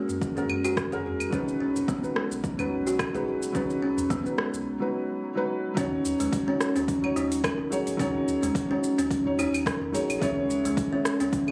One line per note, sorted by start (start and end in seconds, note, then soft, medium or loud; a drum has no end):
0.00 0.33 G#3 medium
0.00 0.35 G#3 medium
0.00 0.33 F#4 medium
0.00 0.34 A#4 medium
0.09 0.43 F#2 medium
0.09 shaker medium
0.22 kick loud
0.22 shaker medium
0.36 0.88 G#3 medium
0.36 0.44 C#4 medium
0.36 0.89 F#4 medium
0.36 0.89 A#4 medium
0.36 udu medium
0.36 shaker soft
0.49 0.84 F#2 medium
0.49 claves medium
0.65 0.77 F#4 medium
0.65 claves medium
0.65 shaker medium
0.77 kick medium
0.77 cross-stick medium
0.77 shaker soft
0.91 1.06 F#2 loud
0.91 1.29 G#3 medium
0.91 1.30 F#4 medium
0.91 1.04 G#4 medium
0.91 1.30 A#4 loud
0.91 udu medium
0.91 shaker soft
1.05 1.24 E2 medium
1.20 claves medium
1.20 shaker medium
1.30 1.52 B1 medium
1.30 1.99 F#3 medium
1.30 1.59 C#4 medium
1.30 2.00 D#4 medium
1.30 kick loud
1.30 shaker soft
1.34 2.01 B4 loud
1.48 shaker soft
1.60 1.71 B1 medium
1.60 1.75 C#4 medium
1.75 1.84 B1 loud
1.75 udu medium
1.75 shaker medium
1.88 2.03 B3 loud
1.88 kick loud
1.88 shaker medium
2.02 2.55 F#3 medium
2.02 2.55 D#4 medium
2.02 2.56 B4 medium
2.02 shaker soft
2.16 2.58 G#3 medium
2.16 cross-stick medium
2.31 2.65 B1 loud
2.31 shaker medium
2.44 kick loud
2.44 shaker medium
2.58 3.10 F#3 medium
2.58 2.66 C#4 medium
2.58 3.11 D#4 medium
2.58 3.11 B4 medium
2.58 udu medium
2.58 claves medium
2.58 shaker soft
2.71 3.06 B1 medium
2.87 2.99 F#4 medium
2.87 shaker medium
2.99 kick medium
2.99 cross-stick medium
2.99 claves medium
2.99 shaker medium
3.13 3.28 B1 loud
3.13 3.51 F#3 medium
3.13 3.52 D#4 medium
3.13 3.27 G#4 medium
3.13 3.52 B4 medium
3.13 shaker soft
3.27 3.46 F#1 medium
3.42 shaker medium
3.53 3.74 B1 loud
3.53 4.21 F#3 medium
3.53 3.81 C#4 medium
3.53 4.22 D#4 medium
3.53 kick medium
3.53 shaker soft
3.57 4.23 B4 loud
3.70 shaker soft
3.82 3.93 B1 medium
3.82 3.97 C#4 medium
3.98 4.06 B1 loud
3.98 udu medium
3.98 shaker medium
4.10 4.25 B3 loud
4.10 kick medium
4.10 shaker medium
4.24 4.77 F#3 medium
4.24 4.78 D#4 medium
4.24 4.78 B4 medium
4.24 shaker soft
4.38 4.66 G#3 medium
4.38 cross-stick medium
4.54 4.66 B1 loud
4.54 shaker medium
4.80 5.33 F#3 medium
4.80 5.33 D#4 medium
4.80 5.34 B4 medium
5.35 5.73 F#3 medium
5.35 5.74 D#4 medium
5.35 5.74 B4 loud
5.75 5.96 D#2 loud
5.75 6.43 F#3 loud
5.75 5.92 C#4 loud
5.75 6.44 D#4 medium
5.75 kick loud
5.75 open hi-hat medium
5.75 shaker soft
5.79 6.45 C#5 loud
6.05 6.15 D#2 medium
6.05 open hi-hat soft
6.05 shaker medium
6.20 6.29 D#2 loud
6.20 6.46 G#3 medium
6.20 open hi-hat soft
6.20 udu medium
6.20 shaker soft
6.33 kick loud
6.33 open hi-hat medium
6.33 shaker soft
6.47 6.99 F#3 medium
6.47 6.55 C#4 medium
6.47 7.00 D#4 medium
6.47 7.00 C#5 medium
6.61 cross-stick medium
6.61 shaker medium
6.76 7.09 D#2 loud
6.76 6.88 C#4 loud
6.76 open hi-hat soft
6.76 shaker soft
6.88 kick loud
6.88 open hi-hat medium
6.88 shaker soft
7.02 7.55 F#3 medium
7.02 7.55 D#4 medium
7.02 7.56 C#5 medium
7.02 udu medium
7.02 claves medium
7.16 7.51 D#2 medium
7.16 7.43 D#4 loud
7.16 open hi-hat soft
7.16 shaker medium
7.32 open hi-hat medium
7.32 shaker soft
7.44 7.70 A#4 medium
7.44 kick loud
7.44 cross-stick medium
7.44 open hi-hat soft
7.44 claves medium
7.44 shaker soft
7.59 7.68 D#1 medium
7.70 7.82 A#1 medium
7.70 7.96 F#3 medium
7.70 7.96 D#4 medium
7.70 7.98 G#4 medium
7.70 7.97 C#5 loud
7.70 open hi-hat medium
7.70 shaker medium
7.87 7.95 A#1 medium
7.87 open hi-hat soft
7.87 shaker soft
7.97 8.19 D#2 loud
7.97 8.65 F#3 loud
7.97 8.14 C#4 loud
7.97 8.66 D#4 medium
7.97 8.67 C#5 loud
7.97 kick loud
7.97 open hi-hat medium
7.97 shaker soft
8.28 8.38 D#2 medium
8.28 open hi-hat soft
8.28 shaker medium
8.42 8.51 D#2 medium
8.42 8.69 G#3 medium
8.42 open hi-hat soft
8.42 udu loud
8.42 shaker soft
8.55 kick loud
8.55 open hi-hat medium
8.55 shaker soft
8.69 9.22 F#3 medium
8.69 8.78 C#4 loud
8.69 9.22 D#4 medium
8.69 9.23 C#5 medium
8.84 shaker medium
8.98 9.32 D#2 medium
8.98 9.10 C#4 loud
8.98 open hi-hat soft
8.98 shaker soft
9.11 kick loud
9.11 open hi-hat medium
9.11 shaker soft
9.25 9.77 F#3 medium
9.25 9.78 D#4 medium
9.25 9.78 C#5 medium
9.25 udu medium
9.39 9.73 D#2 medium
9.39 9.65 D#4 loud
9.39 open hi-hat soft
9.39 claves medium
9.39 shaker medium
9.54 open hi-hat medium
9.54 claves medium
9.54 shaker soft
9.66 9.93 A#4 medium
9.66 kick loud
9.66 cross-stick medium
9.66 open hi-hat soft
9.66 shaker soft
9.81 9.90 D#1 loud
9.81 udu medium
9.92 10.04 A#1 medium
9.92 10.18 F#3 medium
9.92 10.18 D#4 medium
9.92 10.21 G#4 medium
9.92 10.19 C#5 medium
9.92 open hi-hat medium
9.92 shaker medium
10.09 10.18 A#1 loud
10.09 open hi-hat soft
10.09 claves medium
10.09 shaker soft
10.19 10.41 C#2 loud
10.19 10.88 G#3 loud
10.19 10.36 C#4 loud
10.19 10.89 E4 medium
10.19 10.89 C#5 loud
10.19 kick loud
10.19 open hi-hat medium
10.19 shaker soft
10.49 10.59 C#2 medium
10.49 open hi-hat soft
10.49 shaker medium
10.65 10.73 C#2 loud
10.65 10.91 G#3 medium
10.65 open hi-hat soft
10.65 udu medium
10.65 shaker soft
10.77 kick loud
10.77 open hi-hat medium
10.77 shaker soft
10.91 11.44 G#3 medium
10.91 11.00 C#4 medium
10.91 11.44 E4 medium
10.91 11.45 C#5 medium
11.05 cross-stick medium
11.05 shaker medium
11.20 11.51 C#2 medium
11.20 11.32 C#4 loud
11.20 open hi-hat soft
11.20 shaker soft
11.33 kick loud
11.33 open hi-hat medium
11.33 shaker soft
11.47 11.51 G#3 medium
11.47 11.51 E4 medium
11.47 udu medium
11.47 claves medium